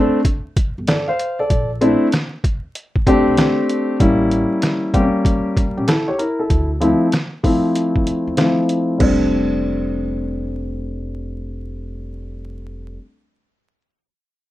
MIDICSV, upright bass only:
0, 0, Header, 1, 2, 480
1, 0, Start_track
1, 0, Key_signature, -1, "major"
1, 0, Tempo, 625000
1, 1154, Time_signature, 4, 2, 24, 8
1, 11143, End_track
2, 0, Start_track
2, 0, Title_t, "Upright bass"
2, 0, Program_c, 0, 32
2, 600, Note_on_c, 0, 31, 86
2, 664, Note_off_c, 0, 31, 0
2, 1157, Note_on_c, 0, 34, 93
2, 1482, Note_off_c, 0, 34, 0
2, 2516, Note_on_c, 0, 36, 83
2, 2581, Note_off_c, 0, 36, 0
2, 3075, Note_on_c, 0, 33, 95
2, 3401, Note_off_c, 0, 33, 0
2, 4436, Note_on_c, 0, 34, 83
2, 4501, Note_off_c, 0, 34, 0
2, 4995, Note_on_c, 0, 38, 100
2, 5321, Note_off_c, 0, 38, 0
2, 6355, Note_on_c, 0, 40, 80
2, 6421, Note_off_c, 0, 40, 0
2, 6917, Note_on_c, 0, 29, 84
2, 9956, Note_off_c, 0, 29, 0
2, 11143, End_track
0, 0, End_of_file